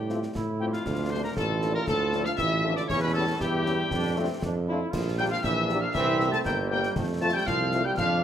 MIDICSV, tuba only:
0, 0, Header, 1, 2, 480
1, 0, Start_track
1, 0, Key_signature, -1, "major"
1, 0, Tempo, 508475
1, 815, Time_signature, 2, 2, 24, 8
1, 7775, End_track
2, 0, Start_track
2, 0, Title_t, "Tuba"
2, 0, Program_c, 0, 58
2, 0, Note_on_c, 0, 45, 88
2, 255, Note_off_c, 0, 45, 0
2, 333, Note_on_c, 0, 45, 96
2, 734, Note_off_c, 0, 45, 0
2, 804, Note_on_c, 0, 38, 96
2, 1209, Note_off_c, 0, 38, 0
2, 1288, Note_on_c, 0, 33, 100
2, 1691, Note_off_c, 0, 33, 0
2, 1766, Note_on_c, 0, 38, 102
2, 2170, Note_off_c, 0, 38, 0
2, 2251, Note_on_c, 0, 33, 101
2, 2653, Note_off_c, 0, 33, 0
2, 2732, Note_on_c, 0, 40, 103
2, 3133, Note_off_c, 0, 40, 0
2, 3208, Note_on_c, 0, 40, 99
2, 3611, Note_off_c, 0, 40, 0
2, 3691, Note_on_c, 0, 41, 108
2, 4053, Note_off_c, 0, 41, 0
2, 4174, Note_on_c, 0, 41, 110
2, 4574, Note_off_c, 0, 41, 0
2, 4653, Note_on_c, 0, 34, 108
2, 5054, Note_off_c, 0, 34, 0
2, 5133, Note_on_c, 0, 34, 112
2, 5534, Note_off_c, 0, 34, 0
2, 5615, Note_on_c, 0, 36, 110
2, 6015, Note_off_c, 0, 36, 0
2, 6093, Note_on_c, 0, 31, 110
2, 6493, Note_off_c, 0, 31, 0
2, 6567, Note_on_c, 0, 41, 104
2, 6970, Note_off_c, 0, 41, 0
2, 7047, Note_on_c, 0, 36, 100
2, 7450, Note_off_c, 0, 36, 0
2, 7527, Note_on_c, 0, 41, 101
2, 7775, Note_off_c, 0, 41, 0
2, 7775, End_track
0, 0, End_of_file